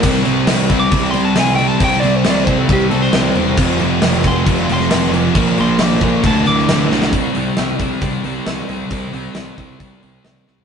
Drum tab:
CC |x-x-x-x-x-x-x-x-|x-x-x-x-x-x-x-x-|x-x-x-x-x-x-x-x-|x-x-x-x-x-x-x---|
HH |----------------|----------------|----------------|----------------|
SD |----o-------o---|----o------oo---|----o------oo---|----o------oo-oo|
FT |----------------|----------------|----------------|----------------|
BD |o-----o-o-------|o-----o-o-------|o-----o-o-------|o-----o-o-------|

CC |----------------|----------------|
HH |o-o-o-o-o-o-o-o-|o-o-o-o-o-o-o---|
SD |----o-------o---|----o-------o-o-|
FT |----------------|---------------o|
BD |o-----o-o-------|o-----o-o-------|